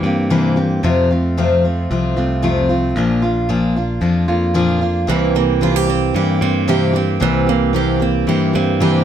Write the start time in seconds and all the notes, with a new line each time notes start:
0.03 G2 A#3 C4 G4
0.30 C3 E3 A#3 C4 G4
0.56 A#3 C4 G4
0.83 F2 C3 F3 A3 C4 F4
1.10 F3 A3 C4 F4
1.37 F2 C3 F3 A3 C4 F4
1.64 F3 A3 C4 F4
1.91 C2 F3 A3 C4 F4
2.16 C2 F3 A3 C4 F4
2.42 F2 C3 F3 A3 C4 F4
2.69 F3 A3 C4 F4
2.96 A#1 A#2 F3 A#3 D4 F4
3.22 A#3 D4 F4
3.49 A#2 F3 A#3 D4 F4
3.76 A#3 D4 F4
4.01 F2 F3 A#3 D4 F4
4.28 F2 A#3 D4 F4
4.54 A#2 F3 A#3 D4 F4
4.81 A#3 D4 F4
5.07 C2 C3 E3 A#3 C4 G4
5.35 A#3 C4 G4
5.61 C3 E3 A#3 C4 F4 G4
5.76 G4
5.87 A#3 C4 G4
6.14 G2 E3 A#3 C4 G4
6.41 G2 A#3 C4 G4
6.68 C3 E3 A#3 C4 G4
6.93 A#3 C4 G4
7.20 C2 C3 E3 A#3 C4 G4
7.46 A#3 C4 G4
7.73 C3 E3 A#3 C4 G4
8.00 A#3 C4 G4
8.27 G2 E3 A#3 C4 G4
8.53 G2 A#3 C4 G4
8.80 C3 E3 A#3 C4 G4